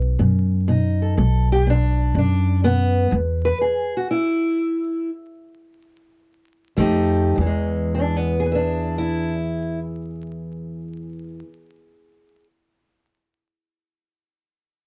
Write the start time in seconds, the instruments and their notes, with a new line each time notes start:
Already playing: upright bass B1, steel-string acoustic guitar B2
0.19 upright bass F#2, steel-string acoustic guitar B2
0.68 steel-string acoustic guitar B2 D#4
1.02 steel-string acoustic guitar A4
1.17 upright bass B1, steel-string acoustic guitar B2 A4
1.52 steel-string acoustic guitar G4
1.67 steel-string acoustic guitar B2 D4
2.15 upright bass F#2, steel-string acoustic guitar B2 D4
2.64 steel-string acoustic guitar B2 B3
3.11 steel-string acoustic guitar E2, upright bass E2
3.45 steel-string acoustic guitar B4
3.61 steel-string acoustic guitar G#4
3.97 steel-string acoustic guitar F#4
4.11 steel-string acoustic guitar E4
6.76 steel-string acoustic guitar F2 F3 A3 D#4 G4, upright bass F2
7.36 steel-string acoustic guitar E2, upright bass E2
7.41 steel-string acoustic guitar E3
7.46 steel-string acoustic guitar G#3
7.95 steel-string acoustic guitar D4
8.16 steel-string acoustic guitar B3
8.40 steel-string acoustic guitar G#4
8.46 steel-string acoustic guitar B4
8.52 steel-string acoustic guitar D4 E5
8.98 steel-string acoustic guitar E4